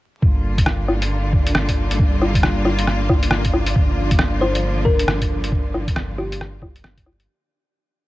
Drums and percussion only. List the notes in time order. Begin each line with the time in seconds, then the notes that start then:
0.22 kick
0.58 kick, closed hi-hat
0.66 cross-stick
0.88 low woodblock
1.02 closed hi-hat
1.33 kick
1.47 closed hi-hat
1.55 cross-stick
1.69 kick, closed hi-hat
1.91 closed hi-hat
1.99 kick
2.21 low woodblock
2.35 kick, closed hi-hat
2.43 cross-stick
2.65 low woodblock
2.79 closed hi-hat
2.87 cross-stick
3.09 kick, low woodblock
3.23 closed hi-hat
3.31 cross-stick
3.45 kick, closed hi-hat
3.53 low woodblock
3.66 closed hi-hat
3.76 kick
4.11 kick, closed hi-hat
4.19 cross-stick
4.42 low woodblock
4.55 closed hi-hat
4.86 kick
4.99 closed hi-hat
5.08 cross-stick
5.21 kick, closed hi-hat
5.44 closed hi-hat
5.52 kick
5.74 low woodblock
5.87 kick, closed hi-hat
5.96 cross-stick
6.18 low woodblock
6.32 closed hi-hat
6.41 cross-stick
6.62 kick, low woodblock
6.76 closed hi-hat
6.84 cross-stick
6.97 kick, closed hi-hat
7.06 low woodblock
7.20 closed hi-hat